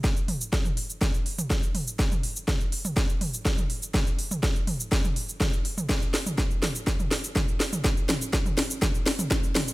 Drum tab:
HH |--o---o---o---o-|--o---o---o---o-|--o---o---o---o-|--o---o---o---o-|
SH |xx-xxx-xxx-xxx-x|xx-xxx-xxx-xxx-x|xx-xxx-xxx-xxx-x|xx-xxx-xxx-xxx-x|
SD |o---o---o---o---|o---o---o---o---|o---o---o---o---|o-o-o-o-o-o-o-o-|
T2 |--o--o--o--o--o-|-o--o--o--o--o--|o--o--o--o--o--o|o--o--o--o--o--o|
BD |o---o---o---o---|o---o---o---o---|o---o---o---o---|o---o---o---o---|

HH |--o---o---o---o-|
SH |xx-xxx-xxx-xxx-x|
SD |o-o-o-o-o-o-o-o-|
T2 |--o--o--o--o--o-|
BD |o---o---o---o---|